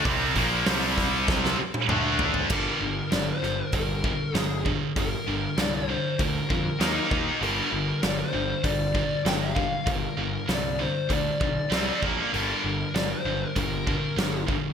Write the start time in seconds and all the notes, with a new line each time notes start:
0.05 C2 C3 G3 C4, kick, open hi-hat
0.35 A#1 A#2 F3 A#3, kick, open hi-hat
0.66 C2 C3 G3 C4, snare, open hi-hat
0.98 kick, snare, open hi-hat
1.28 kick, snare
1.45 snare
1.59 muted distorted electric guitar stroke, muted picked electric bass stroke
1.74 high tom
1.88 D2 D3 A3 D4, mid tom
2.19 floor tom
2.34 floor tom
2.50 G1 G2 D3 G3 A#4, kick, crash
2.81 G1 G2 D3
3.11 G1 G2 D3 D5, snare, open hi-hat
3.28 C5
3.42 G1 G2 D3, snare
3.72 G1 G2 D3 A#4, kick, open hi-hat
4.04 G2 D3, kick
4.34 G1 G2 D3 G#4, snare, open hi-hat
4.66 G2 D3, kick
4.96 G1 G2 D3 A#4, kick, open hi-hat
5.26 G1 G2 D3
5.57 C2 G2 D3 D5, snare, open hi-hat
5.75 C5
5.88 G2 D3
6.18 D2 G2 D3 A#4, kick, open hi-hat
6.49 F2 G2 D3, kick
6.79 D#2 D#3 A#3 D#4, snare, open hi-hat
7.09 D#2 D#3 A#3 D#4, kick
7.40 G1 G2 D3 G3 A#4, open hi-hat
7.71 G1 G2 D3
8.02 G1 G2 D3 D5, snare, open hi-hat
8.19 C5
8.33 G1 G2 D3
8.63 G1 G2 D3 D5, kick, open hi-hat
8.94 G2 D3, kick
9.25 G1 G2 D3 G5, snare, open hi-hat
9.42 F5
9.56 G2 D3, kick
9.87 G1 G2 D3 A#4, kick, open hi-hat
10.17 G1 G2 D3
10.48 C2 G2 D3 D5, snare, open hi-hat
10.79 G2 D3 C5
11.10 D2 G2 D3 D5, kick, open hi-hat
11.41 B1 G2 D3, kick
11.71 C2 C3 G3 C4, snare, open hi-hat
12.02 A#1 A#2 F3 A#3, kick
12.34 G1 G2 D3 G3 A#4, open hi-hat
12.63 G1 G2 D3
12.94 G1 G2 D3 D5, snare, open hi-hat
13.11 C5
13.25 G1 G2 D3
13.56 G1 G2 D3 A#4, kick, open hi-hat
13.87 G2 D3, kick
14.17 G1 G2 D3, snare, open hi-hat
14.48 G2 D3, kick